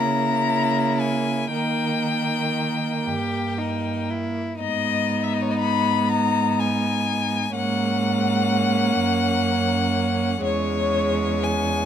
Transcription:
0, 0, Header, 1, 5, 480
1, 0, Start_track
1, 0, Tempo, 1020408
1, 723, Time_signature, 6, 3, 24, 8
1, 2638, Tempo, 967742
1, 5038, Tempo, 1001669
1, 5712, End_track
2, 0, Start_track
2, 0, Title_t, "Violin"
2, 0, Program_c, 0, 40
2, 0, Note_on_c, 0, 82, 64
2, 472, Note_on_c, 0, 80, 54
2, 479, Note_off_c, 0, 82, 0
2, 717, Note_off_c, 0, 80, 0
2, 720, Note_on_c, 0, 79, 56
2, 1907, Note_off_c, 0, 79, 0
2, 2165, Note_on_c, 0, 75, 61
2, 2462, Note_on_c, 0, 76, 42
2, 2469, Note_off_c, 0, 75, 0
2, 2510, Note_on_c, 0, 75, 46
2, 2517, Note_off_c, 0, 76, 0
2, 2549, Note_on_c, 0, 73, 46
2, 2556, Note_off_c, 0, 75, 0
2, 2590, Note_on_c, 0, 75, 45
2, 2597, Note_off_c, 0, 73, 0
2, 2628, Note_off_c, 0, 75, 0
2, 2631, Note_on_c, 0, 83, 59
2, 2877, Note_on_c, 0, 82, 62
2, 2884, Note_off_c, 0, 83, 0
2, 3127, Note_on_c, 0, 80, 57
2, 3134, Note_off_c, 0, 82, 0
2, 3601, Note_off_c, 0, 80, 0
2, 3604, Note_on_c, 0, 78, 75
2, 5015, Note_off_c, 0, 78, 0
2, 5035, Note_on_c, 0, 73, 73
2, 5510, Note_on_c, 0, 80, 71
2, 5517, Note_off_c, 0, 73, 0
2, 5712, Note_off_c, 0, 80, 0
2, 5712, End_track
3, 0, Start_track
3, 0, Title_t, "Violin"
3, 0, Program_c, 1, 40
3, 0, Note_on_c, 1, 64, 42
3, 720, Note_off_c, 1, 64, 0
3, 723, Note_on_c, 1, 63, 34
3, 1381, Note_off_c, 1, 63, 0
3, 1443, Note_on_c, 1, 67, 40
3, 1687, Note_on_c, 1, 63, 38
3, 1694, Note_off_c, 1, 67, 0
3, 1931, Note_on_c, 1, 64, 38
3, 1938, Note_off_c, 1, 63, 0
3, 2167, Note_off_c, 1, 64, 0
3, 2169, Note_on_c, 1, 63, 39
3, 3588, Note_off_c, 1, 63, 0
3, 3604, Note_on_c, 1, 61, 45
3, 5015, Note_off_c, 1, 61, 0
3, 5035, Note_on_c, 1, 61, 46
3, 5712, Note_off_c, 1, 61, 0
3, 5712, End_track
4, 0, Start_track
4, 0, Title_t, "Viola"
4, 0, Program_c, 2, 41
4, 0, Note_on_c, 2, 58, 44
4, 719, Note_off_c, 2, 58, 0
4, 722, Note_on_c, 2, 58, 37
4, 2052, Note_off_c, 2, 58, 0
4, 2166, Note_on_c, 2, 59, 40
4, 3586, Note_off_c, 2, 59, 0
4, 3605, Note_on_c, 2, 58, 48
4, 5016, Note_off_c, 2, 58, 0
4, 5034, Note_on_c, 2, 56, 50
4, 5712, Note_off_c, 2, 56, 0
4, 5712, End_track
5, 0, Start_track
5, 0, Title_t, "Cello"
5, 0, Program_c, 3, 42
5, 0, Note_on_c, 3, 49, 47
5, 707, Note_off_c, 3, 49, 0
5, 725, Note_on_c, 3, 51, 39
5, 1442, Note_on_c, 3, 43, 33
5, 1449, Note_off_c, 3, 51, 0
5, 2071, Note_off_c, 3, 43, 0
5, 2170, Note_on_c, 3, 44, 39
5, 3588, Note_off_c, 3, 44, 0
5, 3608, Note_on_c, 3, 44, 50
5, 4307, Note_off_c, 3, 44, 0
5, 4319, Note_on_c, 3, 42, 51
5, 5021, Note_off_c, 3, 42, 0
5, 5039, Note_on_c, 3, 40, 51
5, 5712, Note_off_c, 3, 40, 0
5, 5712, End_track
0, 0, End_of_file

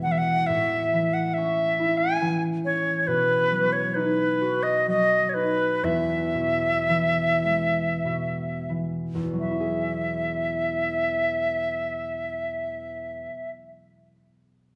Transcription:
0, 0, Header, 1, 3, 480
1, 0, Start_track
1, 0, Key_signature, 4, "major"
1, 0, Tempo, 870827
1, 270, Time_signature, 3, 2, 24, 8
1, 2184, Tempo, 936037
1, 3144, Tempo, 1045296
1, 3624, Tempo, 1176471
1, 4104, Tempo, 1345291
1, 6494, End_track
2, 0, Start_track
2, 0, Title_t, "Flute"
2, 0, Program_c, 0, 73
2, 13, Note_on_c, 0, 78, 72
2, 64, Note_on_c, 0, 76, 64
2, 72, Note_off_c, 0, 78, 0
2, 99, Note_on_c, 0, 78, 79
2, 108, Note_off_c, 0, 76, 0
2, 257, Note_on_c, 0, 76, 77
2, 265, Note_off_c, 0, 78, 0
2, 626, Note_on_c, 0, 78, 66
2, 634, Note_off_c, 0, 76, 0
2, 738, Note_on_c, 0, 76, 74
2, 746, Note_off_c, 0, 78, 0
2, 1089, Note_on_c, 0, 80, 76
2, 1098, Note_off_c, 0, 76, 0
2, 1338, Note_off_c, 0, 80, 0
2, 1460, Note_on_c, 0, 73, 76
2, 1669, Note_off_c, 0, 73, 0
2, 1669, Note_on_c, 0, 73, 54
2, 1694, Note_on_c, 0, 71, 77
2, 1702, Note_off_c, 0, 73, 0
2, 2053, Note_on_c, 0, 73, 67
2, 2062, Note_off_c, 0, 71, 0
2, 2174, Note_on_c, 0, 71, 70
2, 2183, Note_off_c, 0, 73, 0
2, 2526, Note_on_c, 0, 75, 71
2, 2534, Note_off_c, 0, 71, 0
2, 2649, Note_off_c, 0, 75, 0
2, 2660, Note_on_c, 0, 75, 74
2, 2867, Note_on_c, 0, 73, 51
2, 2874, Note_off_c, 0, 75, 0
2, 2891, Note_on_c, 0, 71, 75
2, 2898, Note_off_c, 0, 73, 0
2, 3148, Note_on_c, 0, 76, 72
2, 3155, Note_off_c, 0, 71, 0
2, 4336, Note_off_c, 0, 76, 0
2, 4583, Note_on_c, 0, 76, 67
2, 6046, Note_off_c, 0, 76, 0
2, 6494, End_track
3, 0, Start_track
3, 0, Title_t, "Harp"
3, 0, Program_c, 1, 46
3, 0, Note_on_c, 1, 40, 50
3, 0, Note_on_c, 1, 47, 42
3, 0, Note_on_c, 1, 56, 42
3, 31, Note_on_c, 1, 52, 41
3, 268, Note_on_c, 1, 45, 53
3, 297, Note_off_c, 1, 40, 0
3, 297, Note_off_c, 1, 47, 0
3, 297, Note_off_c, 1, 52, 0
3, 297, Note_off_c, 1, 56, 0
3, 514, Note_on_c, 1, 52, 41
3, 757, Note_on_c, 1, 61, 44
3, 990, Note_on_c, 1, 64, 47
3, 1212, Note_off_c, 1, 52, 0
3, 1219, Note_on_c, 1, 52, 46
3, 1462, Note_off_c, 1, 61, 0
3, 1464, Note_on_c, 1, 61, 43
3, 1697, Note_on_c, 1, 47, 53
3, 1730, Note_off_c, 1, 45, 0
3, 1730, Note_off_c, 1, 52, 0
3, 1940, Note_on_c, 1, 54, 43
3, 2182, Note_on_c, 1, 63, 50
3, 2213, Note_off_c, 1, 64, 0
3, 2416, Note_on_c, 1, 66, 47
3, 2647, Note_off_c, 1, 54, 0
3, 2653, Note_on_c, 1, 54, 51
3, 2895, Note_off_c, 1, 63, 0
3, 2897, Note_on_c, 1, 63, 42
3, 3000, Note_off_c, 1, 61, 0
3, 3143, Note_on_c, 1, 40, 56
3, 3168, Note_off_c, 1, 47, 0
3, 3168, Note_off_c, 1, 54, 0
3, 3171, Note_off_c, 1, 63, 0
3, 3378, Note_on_c, 1, 47, 42
3, 3611, Note_off_c, 1, 66, 0
3, 3629, Note_on_c, 1, 52, 44
3, 3853, Note_on_c, 1, 56, 43
3, 4096, Note_off_c, 1, 47, 0
3, 4101, Note_on_c, 1, 47, 42
3, 4122, Note_off_c, 1, 52, 0
3, 4332, Note_on_c, 1, 52, 34
3, 4489, Note_off_c, 1, 40, 0
3, 4493, Note_on_c, 1, 40, 43
3, 4522, Note_off_c, 1, 47, 0
3, 4526, Note_on_c, 1, 47, 37
3, 4559, Note_on_c, 1, 54, 41
3, 4592, Note_on_c, 1, 59, 37
3, 4595, Note_off_c, 1, 52, 0
3, 4595, Note_off_c, 1, 56, 0
3, 4622, Note_on_c, 1, 64, 37
3, 4655, Note_on_c, 1, 68, 43
3, 5956, Note_off_c, 1, 40, 0
3, 5989, Note_off_c, 1, 47, 0
3, 6022, Note_off_c, 1, 54, 0
3, 6055, Note_off_c, 1, 59, 0
3, 6085, Note_off_c, 1, 64, 0
3, 6118, Note_off_c, 1, 68, 0
3, 6494, End_track
0, 0, End_of_file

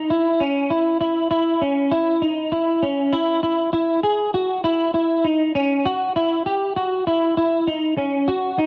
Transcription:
0, 0, Header, 1, 2, 480
1, 0, Start_track
1, 0, Tempo, 606061
1, 1040, Time_signature, 4, 2, 24, 8
1, 6861, End_track
2, 0, Start_track
2, 0, Title_t, "Clean electric guitar"
2, 0, Program_c, 0, 27
2, 81, Note_on_c, 0, 64, 74
2, 319, Note_on_c, 0, 61, 67
2, 320, Note_off_c, 0, 64, 0
2, 557, Note_on_c, 0, 64, 67
2, 560, Note_off_c, 0, 61, 0
2, 787, Note_off_c, 0, 64, 0
2, 797, Note_on_c, 0, 64, 67
2, 1025, Note_off_c, 0, 64, 0
2, 1035, Note_on_c, 0, 64, 76
2, 1277, Note_off_c, 0, 64, 0
2, 1278, Note_on_c, 0, 61, 63
2, 1516, Note_on_c, 0, 64, 74
2, 1519, Note_off_c, 0, 61, 0
2, 1757, Note_on_c, 0, 63, 67
2, 1758, Note_off_c, 0, 64, 0
2, 1995, Note_on_c, 0, 64, 69
2, 1998, Note_off_c, 0, 63, 0
2, 2237, Note_off_c, 0, 64, 0
2, 2238, Note_on_c, 0, 61, 72
2, 2476, Note_on_c, 0, 64, 69
2, 2479, Note_off_c, 0, 61, 0
2, 2708, Note_off_c, 0, 64, 0
2, 2717, Note_on_c, 0, 64, 67
2, 2945, Note_off_c, 0, 64, 0
2, 2954, Note_on_c, 0, 64, 84
2, 3192, Note_off_c, 0, 64, 0
2, 3195, Note_on_c, 0, 68, 75
2, 3435, Note_off_c, 0, 68, 0
2, 3439, Note_on_c, 0, 66, 78
2, 3672, Note_off_c, 0, 66, 0
2, 3676, Note_on_c, 0, 64, 81
2, 3904, Note_off_c, 0, 64, 0
2, 3913, Note_on_c, 0, 64, 84
2, 4153, Note_on_c, 0, 63, 79
2, 4156, Note_off_c, 0, 64, 0
2, 4393, Note_off_c, 0, 63, 0
2, 4396, Note_on_c, 0, 61, 76
2, 4637, Note_on_c, 0, 66, 82
2, 4638, Note_off_c, 0, 61, 0
2, 4875, Note_off_c, 0, 66, 0
2, 4878, Note_on_c, 0, 64, 90
2, 5113, Note_off_c, 0, 64, 0
2, 5116, Note_on_c, 0, 67, 77
2, 5354, Note_off_c, 0, 67, 0
2, 5357, Note_on_c, 0, 66, 77
2, 5596, Note_off_c, 0, 66, 0
2, 5599, Note_on_c, 0, 64, 77
2, 5830, Note_off_c, 0, 64, 0
2, 5839, Note_on_c, 0, 64, 85
2, 6078, Note_on_c, 0, 63, 81
2, 6079, Note_off_c, 0, 64, 0
2, 6313, Note_off_c, 0, 63, 0
2, 6316, Note_on_c, 0, 61, 75
2, 6556, Note_on_c, 0, 66, 83
2, 6558, Note_off_c, 0, 61, 0
2, 6798, Note_off_c, 0, 66, 0
2, 6799, Note_on_c, 0, 63, 91
2, 6861, Note_off_c, 0, 63, 0
2, 6861, End_track
0, 0, End_of_file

